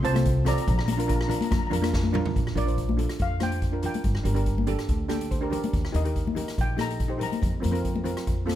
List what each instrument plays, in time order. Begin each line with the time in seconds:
0.03 upright bass C2, steel pan C4 F4 C5 A5, closed hi-hat
0.12 steel pan C4 F4 A4, cross-stick, closed hi-hat, high conga
0.25 kick, closed hi-hat
0.45 steel pan C4 F4 A4 D5 A#5, cross-stick, closed hi-hat, low conga
0.54 steel pan A#5, closed hi-hat
0.62 steel pan A#5
0.68 upright bass A#1, steel pan A#5, kick, closed hi-hat
0.78 steel pan A#5, cross-stick
0.86 steel pan A#5, closed hi-hat, high conga
0.92 steel pan A#5
0.97 steel pan D4 F4 A#4 A#5, closed hi-hat
1.07 steel pan D4 F4 A#4 A#5, kick, closed hi-hat
1.15 steel pan A#5
1.21 steel pan A#5, cross-stick
1.27 steel pan D4 F4 A#4 A#5, closed hi-hat, low conga
1.37 steel pan A#5
1.41 steel pan A#5, closed hi-hat, high conga
1.51 upright bass F2, steel pan A#5, kick, cross-stick, closed hi-hat, high conga
1.59 steel pan A#5
1.67 upright bass F2, steel pan D4 F4 A#5
1.71 steel pan A#4 A#5, closed hi-hat, low conga
1.82 steel pan D4 F4 A#4, cross-stick, closed hi-hat, high conga
1.93 kick, snare
2.03 high conga
2.12 steel pan D4 F4 A#4, mid tom, low conga
2.26 floor tom
2.36 upright bass A#1, kick, closed hi-hat
2.47 cross-stick
2.55 upright bass A#1, steel pan D4 F4 A#4 D5, closed hi-hat, low conga
2.65 steel pan D4 F4 C5, closed hi-hat
2.78 kick, closed hi-hat
2.89 high conga
2.97 steel pan D4 F4 A4, closed hi-hat, low conga
3.09 cross-stick, closed hi-hat
3.19 upright bass F2, steel pan F5, kick, closed hi-hat
3.40 steel pan D4 F4 C5 G5, cross-stick, closed hi-hat, high conga
3.52 closed hi-hat
3.62 kick, closed hi-hat
3.72 steel pan D4 F4 A#4
3.82 steel pan D4 F4 A#4 G5, closed hi-hat, low conga
3.94 closed hi-hat, high conga
4.04 upright bass G1, kick, closed hi-hat
4.15 cross-stick
4.23 upright bass G1, steel pan D4 G4 A#4, closed hi-hat, low conga
4.34 steel pan D4 G4 A#4, closed hi-hat
4.46 kick, closed hi-hat
4.58 high conga
4.67 steel pan D4 G4 A4, closed hi-hat, low conga
4.79 cross-stick, closed hi-hat
4.89 upright bass D2, kick, closed hi-hat
5.08 steel pan D4 G4 A4 G5, cross-stick, closed hi-hat, high conga
5.21 closed hi-hat
5.31 steel pan C5, kick, closed hi-hat
5.41 steel pan D4 G4 A#4
5.50 steel pan D4 G4 A#4 D5, closed hi-hat, low conga
5.63 closed hi-hat, high conga
5.73 upright bass D#2, kick, closed hi-hat
5.85 cross-stick
5.92 upright bass D#2, steel pan D#4 G4 A#4 D#5, closed hi-hat, low conga
6.04 steel pan D#4 G4 A#4, closed hi-hat
6.16 kick, closed hi-hat
6.27 high conga
6.35 steel pan D#4 G4 A#4, closed hi-hat, low conga
6.48 cross-stick, closed hi-hat
6.58 upright bass A#1, steel pan G5, kick, closed hi-hat
6.77 steel pan D#4 G4 A4, cross-stick, closed hi-hat, high conga
6.81 steel pan A#5
6.90 closed hi-hat
7.00 kick, closed hi-hat
7.08 steel pan D#4 G4 C5
7.18 steel pan D#4 G4 A#4, closed hi-hat, low conga
7.23 steel pan A#5
7.32 closed hi-hat, high conga
7.42 upright bass F2, kick, closed hi-hat, low conga
7.60 steel pan C4 F4 A#4, closed hi-hat, high conga, low conga
7.65 upright bass F2
7.71 steel pan C4 F4 A#4, closed hi-hat
7.85 kick, closed hi-hat
7.96 high conga
8.04 steel pan C4 F4 A#4, closed hi-hat, low conga
8.17 cross-stick, closed hi-hat
8.27 upright bass F2, kick, closed hi-hat
8.46 steel pan C4 F4 A4, cross-stick, closed hi-hat, high conga